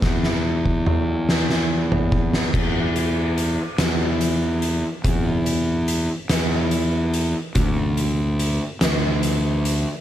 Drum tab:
CC |------------|x-----------|------------|------------|
HH |------------|--x-x-x-x-x-|x-x-x-x-x-x-|x-x-x-x-x-x-|
SD |oo----oo---o|------o-----|------o-----|------o-----|
T2 |----o-------|------------|------------|------------|
FT |---------o--|------------|------------|------------|
BD |o--o------o-|o-----------|o-----------|o-----------|